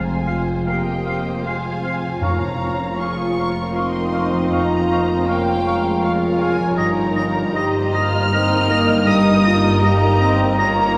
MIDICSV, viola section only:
0, 0, Header, 1, 2, 480
1, 0, Start_track
1, 0, Tempo, 779221
1, 1378, Time_signature, 3, 2, 24, 8
1, 1853, Tempo, 758534
1, 6896, End_track
2, 0, Start_track
2, 0, Title_t, "Viola section"
2, 0, Program_c, 0, 48
2, 0, Note_on_c, 0, 56, 58
2, 0, Note_on_c, 0, 65, 58
2, 405, Note_off_c, 0, 56, 0
2, 417, Note_off_c, 0, 65, 0
2, 424, Note_on_c, 0, 58, 59
2, 424, Note_on_c, 0, 67, 61
2, 892, Note_on_c, 0, 56, 61
2, 895, Note_on_c, 0, 65, 61
2, 904, Note_off_c, 0, 58, 0
2, 904, Note_off_c, 0, 67, 0
2, 1137, Note_off_c, 0, 56, 0
2, 1145, Note_on_c, 0, 53, 59
2, 1372, Note_on_c, 0, 61, 63
2, 1375, Note_off_c, 0, 65, 0
2, 1602, Note_off_c, 0, 61, 0
2, 1609, Note_on_c, 0, 61, 66
2, 1836, Note_off_c, 0, 53, 0
2, 1844, Note_off_c, 0, 61, 0
2, 1844, Note_on_c, 0, 53, 68
2, 1844, Note_on_c, 0, 65, 67
2, 2321, Note_off_c, 0, 53, 0
2, 2321, Note_on_c, 0, 60, 70
2, 2322, Note_on_c, 0, 63, 77
2, 2331, Note_off_c, 0, 65, 0
2, 3288, Note_off_c, 0, 60, 0
2, 3289, Note_off_c, 0, 63, 0
2, 3289, Note_on_c, 0, 61, 70
2, 3290, Note_on_c, 0, 58, 76
2, 3521, Note_on_c, 0, 56, 76
2, 3530, Note_off_c, 0, 58, 0
2, 3761, Note_on_c, 0, 65, 80
2, 3765, Note_off_c, 0, 61, 0
2, 4224, Note_on_c, 0, 55, 78
2, 4225, Note_on_c, 0, 63, 83
2, 4226, Note_off_c, 0, 65, 0
2, 4233, Note_off_c, 0, 56, 0
2, 4717, Note_on_c, 0, 67, 88
2, 4726, Note_off_c, 0, 63, 0
2, 4972, Note_off_c, 0, 67, 0
2, 4974, Note_on_c, 0, 65, 85
2, 5197, Note_off_c, 0, 55, 0
2, 5211, Note_on_c, 0, 63, 86
2, 5214, Note_on_c, 0, 60, 92
2, 5219, Note_off_c, 0, 65, 0
2, 5448, Note_on_c, 0, 58, 100
2, 5453, Note_off_c, 0, 60, 0
2, 5680, Note_off_c, 0, 63, 0
2, 5684, Note_on_c, 0, 55, 82
2, 5688, Note_on_c, 0, 63, 88
2, 5689, Note_off_c, 0, 58, 0
2, 5924, Note_off_c, 0, 63, 0
2, 5930, Note_on_c, 0, 65, 88
2, 6158, Note_off_c, 0, 55, 0
2, 6161, Note_on_c, 0, 67, 92
2, 6165, Note_on_c, 0, 55, 100
2, 6170, Note_off_c, 0, 65, 0
2, 6402, Note_on_c, 0, 60, 92
2, 6403, Note_off_c, 0, 55, 0
2, 6646, Note_off_c, 0, 67, 0
2, 6647, Note_off_c, 0, 60, 0
2, 6650, Note_on_c, 0, 58, 94
2, 6652, Note_on_c, 0, 65, 95
2, 6893, Note_off_c, 0, 65, 0
2, 6896, Note_off_c, 0, 58, 0
2, 6896, End_track
0, 0, End_of_file